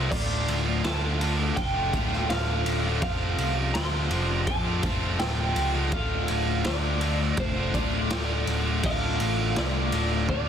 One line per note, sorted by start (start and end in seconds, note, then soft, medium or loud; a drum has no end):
0.00 0.12 F3 medium
0.00 0.13 A3 medium
0.00 0.10 C4 medium
0.00 0.13 F4 medium
0.11 0.44 D1 medium
0.11 0.84 D2 medium
0.11 0.47 A2 medium
0.11 0.48 D3 loud
0.11 0.50 A3 medium
0.11 0.50 F4 loud
0.11 0.84 D5 medium
0.11 kick loud
0.11 crash loud
0.48 0.81 D1 medium
0.48 0.84 A2 medium
0.48 0.68 D3 medium
0.48 0.68 A3 medium
0.48 0.67 F4 medium
0.48 ride medium
0.67 0.85 D3 medium
0.67 0.86 A3 medium
0.67 0.87 F4 medium
0.67 muted overdriven electric guitar stroke medium
0.84 1.49 D2 medium
0.84 1.57 D2 loud
0.84 1.20 A2 medium
0.84 1.21 D3 medium
0.84 1.22 A3 medium
0.84 1.23 F4 loud
0.84 1.56 A5 medium
0.84 snare loud
0.84 ride loud
1.21 1.75 A2 medium
1.21 1.40 D3 medium
1.21 1.40 A3 medium
1.21 1.39 F4 medium
1.21 ride medium
1.39 1.76 D3 medium
1.39 1.75 A3 medium
1.39 1.74 F4 medium
1.39 muted overdriven electric guitar stroke soft
1.56 1.89 F1 medium
1.56 2.29 G5 medium
1.56 kick loud
1.56 ride loud
1.75 1.92 D3 medium
1.75 1.94 A3 medium
1.75 1.94 F4 medium
1.92 2.26 D1 medium
1.92 2.29 A2 medium
1.92 2.13 D3 medium
1.92 2.12 A3 medium
1.92 2.11 F4 medium
1.92 kick medium
1.92 ride medium
2.12 2.30 D3 medium
2.12 2.31 A3 medium
2.12 2.31 F4 medium
2.12 snare soft
2.30 2.62 D1 loud
2.30 2.84 D2 medium
2.30 2.84 A2 loud
2.30 2.49 D3 loud
2.30 2.49 A3 loud
2.30 2.47 F4 loud
2.30 2.80 F5 loud
2.30 snare loud
2.30 ride loud
2.48 2.85 D3 medium
2.48 2.85 A3 medium
2.48 2.84 F4 medium
2.65 2.98 D1 medium
2.65 3.00 A2 medium
2.65 2.85 D3 medium
2.65 2.85 A3 medium
2.65 2.84 F4 medium
2.65 ride medium
2.84 3.01 D3 medium
2.84 3.03 A3 medium
2.84 3.04 F4 medium
3.02 3.35 F1 loud
3.02 3.74 F2 medium
3.02 3.75 C3 medium
3.02 3.39 F3 medium
3.02 3.39 A3 loud
3.02 3.39 C4 medium
3.02 3.41 F4 loud
3.02 3.74 F5 loud
3.02 kick loud
3.02 ride loud
3.38 3.71 C2 medium
3.38 3.58 F3 medium
3.38 3.58 A3 medium
3.38 3.57 C4 medium
3.38 3.57 F4 medium
3.38 ride medium
3.57 3.76 F3 medium
3.57 3.76 A3 medium
3.57 3.76 C4 medium
3.57 3.77 F4 medium
3.57 muted overdriven electric guitar stroke medium
3.74 4.07 D2 loud
3.74 4.48 F2 medium
3.74 4.48 C3 medium
3.74 4.12 F3 loud
3.74 4.13 A3 medium
3.74 4.14 C4 loud
3.74 4.15 F4 loud
3.74 4.47 C6 loud
3.74 snare loud
3.74 ride loud
4.11 4.44 F1 medium
4.11 4.33 F3 medium
4.11 4.33 A3 medium
4.11 ride medium
4.15 4.31 C4 medium
4.15 4.31 F4 medium
4.29 4.66 C4 medium
4.29 4.67 F4 medium
4.29 muted overdriven electric guitar stroke medium
4.33 4.69 F3 medium
4.33 4.68 A3 medium
4.47 4.80 F2 loud
4.47 5.16 A5 loud
4.47 kick loud
4.47 ride loud
4.67 4.85 F3 medium
4.67 4.86 A3 medium
4.67 4.85 C4 medium
4.67 4.87 F4 medium
4.83 5.16 F1 medium
4.83 5.05 F3 medium
4.83 5.05 A3 medium
4.83 5.03 C4 medium
4.83 kick medium
4.83 ride medium
4.88 5.03 F4 medium
5.04 5.22 F3 medium
5.04 5.23 A3 medium
5.04 5.22 C4 medium
5.04 5.23 F4 medium
5.19 5.52 D1 loud
5.19 5.76 F2 medium
5.19 5.76 C3 loud
5.19 5.41 F3 medium
5.19 5.41 A3 loud
5.19 5.39 C4 loud
5.19 5.71 G5 loud
5.19 snare loud
5.19 ride loud
5.24 5.39 F4 loud
5.40 5.77 F3 medium
5.40 5.76 A3 medium
5.40 5.74 C4 medium
5.40 5.74 F4 medium
5.56 5.89 C#2 medium
5.56 5.76 F3 medium
5.56 5.75 A3 medium
5.56 5.74 C4 medium
5.56 5.73 F4 medium
5.56 ride medium
5.75 5.94 F3 medium
5.75 5.94 A3 medium
5.75 5.91 C4 medium
5.75 5.95 F4 medium
5.92 6.25 D1 loud
5.92 6.66 D2 medium
5.92 6.29 A2 loud
5.92 6.31 D3 loud
5.92 6.32 A3 medium
5.92 6.32 F4 loud
5.92 6.65 F5 loud
5.92 kick loud
5.92 ride loud
6.28 6.62 D1 medium
6.28 6.66 A2 medium
6.28 6.50 D3 medium
6.28 ride medium
6.32 6.49 A3 medium
6.32 6.48 F4 medium
6.47 6.68 A3 medium
6.47 6.68 F4 medium
6.47 muted overdriven electric guitar stroke medium
6.51 6.68 D3 medium
6.64 7.30 D2 medium
6.64 8.09 D2 medium
6.64 7.02 A2 loud
6.64 7.03 D3 loud
6.64 7.03 A3 loud
6.64 7.34 D5 medium
6.64 snare loud
6.64 ride loud
6.69 7.04 F4 loud
7.01 7.57 A2 medium
7.01 7.22 D3 medium
7.01 7.21 A3 medium
7.01 7.19 F4 medium
7.01 ride medium
7.20 7.58 D3 medium
7.20 7.58 A3 medium
7.20 7.56 F4 medium
7.20 muted overdriven electric guitar stroke medium
7.37 7.70 F1 medium
7.37 7.77 C5 medium
7.37 kick loud
7.37 ride loud
7.58 7.75 D3 medium
7.58 7.77 A3 medium
7.58 7.76 F4 medium
7.74 8.07 D1 medium
7.74 8.09 A2 medium
7.74 7.95 D3 medium
7.74 7.94 A3 medium
7.74 7.92 F4 medium
7.74 8.43 D5 medium
7.74 kick medium
7.74 ride medium
7.93 8.10 D3 medium
7.93 8.11 A3 medium
7.93 8.11 F4 medium
8.09 8.43 D1 loud
8.09 8.65 D2 loud
8.09 8.65 A2 loud
8.09 8.30 D3 loud
8.09 8.29 A3 loud
8.09 8.28 F4 loud
8.09 snare loud
8.09 ride loud
8.29 8.66 D3 medium
8.29 8.66 A3 medium
8.29 8.65 F4 medium
8.47 8.80 D1 medium
8.47 8.81 A2 medium
8.47 8.66 D3 medium
8.47 8.66 A3 medium
8.47 8.63 F4 medium
8.47 ride medium
8.66 8.83 D3 medium
8.66 8.85 A3 medium
8.66 8.82 F4 medium
8.83 9.16 D1 loud
8.83 9.55 D2 medium
8.83 9.19 A2 medium
8.83 9.20 D3 medium
8.83 9.20 A3 loud
8.83 9.21 F4 medium
8.83 9.58 F5 loud
8.83 kick loud
8.83 ride loud
9.20 9.53 A1 medium
9.20 9.56 A2 medium
9.20 9.40 D3 medium
9.20 9.39 A3 medium
9.20 9.38 F4 medium
9.20 ride medium
9.38 9.57 D3 medium
9.38 9.57 A3 medium
9.38 9.57 F4 medium
9.38 muted overdriven electric guitar stroke soft
9.56 9.90 C2 medium
9.56 10.29 D2 medium
9.56 9.91 A2 loud
9.56 9.93 D3 loud
9.56 9.93 A3 loud
9.56 9.94 F4 loud
9.56 10.28 D5 medium
9.56 snare loud
9.56 ride loud
9.92 10.26 D1 medium
9.92 10.47 A2 medium
9.92 10.12 D3 medium
9.92 10.10 A3 medium
9.92 10.09 F4 medium
9.92 ride medium
10.10 10.47 D3 medium
10.10 10.46 A3 medium
10.10 10.45 F4 medium
10.10 muted overdriven electric guitar stroke medium
10.29 10.49 D2 loud
10.29 10.49 D5 medium
10.29 kick loud